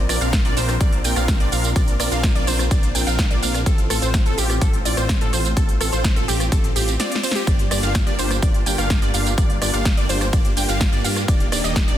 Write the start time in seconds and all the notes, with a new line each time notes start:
0.09 A#1 C4 D4 F4 A#4 D5, cross-stick, open hi-hat, tambourine
0.21 A#1 C4 D4 F4 A#4 F5, closed hi-hat, tambourine
0.33 kick, snare, closed hi-hat, tambourine
0.45 A#1 C4 D4 F4 A#4 D5, closed hi-hat
0.57 A#1 C4 D4 F4 A#4 C5, open hi-hat, tambourine
0.69 cross-stick, closed hi-hat, tambourine
0.81 A#1 C4 D4 F4 A#4 D5, kick, closed hi-hat, tambourine
0.92 closed hi-hat
1.04 A#1 C4 D4 F4 A#4 G5, open hi-hat, tambourine
1.16 A#1 C4 D4 F4 A#4 F5, cross-stick, closed hi-hat, tambourine
1.28 kick, snare, closed hi-hat, tambourine
1.40 A#1 C4 D4 F4 A#4 D5, closed hi-hat
1.52 A#1 C4 D4 F4 A#4 F5, open hi-hat, tambourine
1.64 closed hi-hat, tambourine
1.76 A#1 C4 D4 F4 A#4 D5, kick, closed hi-hat, tambourine
1.88 closed hi-hat
2.00 A#1 C4 D4 F4 A#4 D5, cross-stick, open hi-hat, tambourine
2.12 A#1 C4 D4 F4 A#4 F5, closed hi-hat, tambourine
2.23 kick, snare, closed hi-hat, tambourine
2.35 A#1 C4 D4 F4 A#4 D5, closed hi-hat
2.47 A#1 C4 D4 F4 A#4 C5, open hi-hat, tambourine
2.59 cross-stick, closed hi-hat, tambourine
2.71 A#1 C4 D4 F4 A#4 D5, kick, closed hi-hat, tambourine
2.83 closed hi-hat
2.95 A#1 C4 D4 F4 A#4 G5, open hi-hat, tambourine
3.07 A#1 C4 D4 F4 A#4 F5, closed hi-hat, tambourine
3.19 kick, snare, closed hi-hat, tambourine
3.31 A#1 C4 D4 F4 A#4 D5, closed hi-hat
3.42 A#1 C4 D4 F4 A#4 F5, open hi-hat, tambourine
3.54 cross-stick, closed hi-hat, tambourine
3.66 A1 C4 F4 A4, kick, closed hi-hat, tambourine
3.78 closed hi-hat
3.90 A1 C4 F4 A4, cross-stick, open hi-hat, tambourine
4.02 A1 C4 F4 C5, closed hi-hat, tambourine
4.14 kick, snare, closed hi-hat, tambourine
4.26 A1 C4 F4 A4, closed hi-hat
4.38 A1 C4 F4 G4, open hi-hat, tambourine
4.50 cross-stick, closed hi-hat, tambourine
4.62 A1 C4 F4 A4, kick, closed hi-hat, tambourine
4.73 closed hi-hat
4.85 A1 C4 F4 D5, open hi-hat, tambourine
4.97 A1 C4 F4 C5, cross-stick, closed hi-hat, tambourine
5.09 kick, snare, closed hi-hat, tambourine
5.21 A1 C4 F4 A4, closed hi-hat
5.33 A1 C4 F4 C5, open hi-hat, tambourine
5.45 closed hi-hat, tambourine
5.57 A1 C4 F4 A4, kick, closed hi-hat, tambourine
5.69 closed hi-hat
5.81 A1 C4 F4 A4, cross-stick, open hi-hat, tambourine
5.92 A1 C4 F4 C5, closed hi-hat, tambourine
6.04 kick, snare, closed hi-hat, tambourine
6.16 A1 C4 F4 A4, closed hi-hat
6.28 A1 C4 F4 G4, open hi-hat, tambourine
6.40 cross-stick, closed hi-hat, tambourine
6.52 A1 C4 F4 A4, kick, closed hi-hat, tambourine
6.64 closed hi-hat
6.76 A1 C4 F4 G4, open hi-hat, tambourine
6.88 closed hi-hat, tambourine
7.00 C4 F4 D5, snare, closed hi-hat, tambourine
7.12 snare, closed hi-hat
7.23 C4 F4 C5, open hi-hat, tambourine
7.31 C4 F4 G4, snare, closed hi-hat
7.36 tambourine
7.47 G1 A#3 D4 F4 G4 D5, kick, closed hi-hat, tambourine
7.59 closed hi-hat
7.71 G1 A#3 D4 F4 G4 D5, cross-stick, open hi-hat, tambourine
7.83 G1 A#3 D4 F4 G4 F5, closed hi-hat, tambourine
7.95 kick, snare, closed hi-hat, tambourine
8.07 G1 A#3 D4 F4 G4 D5, closed hi-hat
8.19 G1 A#3 D4 F4 G4 C5, open hi-hat, tambourine
8.31 cross-stick, closed hi-hat, tambourine
8.42 G1 A#3 D4 F4 G4 D5, kick, closed hi-hat, tambourine
8.54 closed hi-hat
8.66 G1 A#3 D4 F4 G4 G5, open hi-hat, tambourine
8.78 G1 A#3 D4 F4 G4 F5, cross-stick, closed hi-hat, tambourine
8.90 kick, snare, closed hi-hat, tambourine
9.02 G1 A#3 D4 F4 G4 D5, closed hi-hat
9.14 G1 A#3 D4 F4 G4 F5, open hi-hat, tambourine
9.26 closed hi-hat, tambourine
9.38 G1 A#3 D4 F4 G4 D5, kick, closed hi-hat, tambourine
9.50 closed hi-hat
9.62 G1 A#3 D4 F4 G4 D5, cross-stick, open hi-hat, tambourine
9.73 G1 A#3 D4 F4 G4 F5, closed hi-hat, tambourine
9.85 kick, snare, closed hi-hat, tambourine
9.97 G1 A#3 D4 F4 G4 D5, closed hi-hat
10.09 G1 A#3 D4 F4 G4 C5, open hi-hat, tambourine
10.21 cross-stick, closed hi-hat, tambourine
10.33 G1 A#3 D4 F4 G4 D5, kick, closed hi-hat, tambourine
10.45 closed hi-hat
10.57 G1 A#3 D4 F4 G4 G5, open hi-hat, tambourine
10.69 G1 A#3 D4 F4 G4 F5, closed hi-hat, tambourine
10.81 kick, snare, closed hi-hat, tambourine
10.92 G2 A#3 D4 F4 G4 D5, closed hi-hat
11.04 G2 A#3 D4 F4 G4 F5, open hi-hat, tambourine
11.16 cross-stick, closed hi-hat, tambourine
11.28 D#1 A#3 D4 D#4 G4 D5, kick, closed hi-hat, tambourine
11.40 closed hi-hat
11.52 D#1 A#3 D4 D#4 G4 D5, cross-stick, open hi-hat, tambourine
11.64 D#1 A#3 D4 D#4 G4 D#5, closed hi-hat, tambourine
11.76 kick, snare, closed hi-hat, tambourine
11.88 D#1 A#3 D4 D#4 G4 D5, closed hi-hat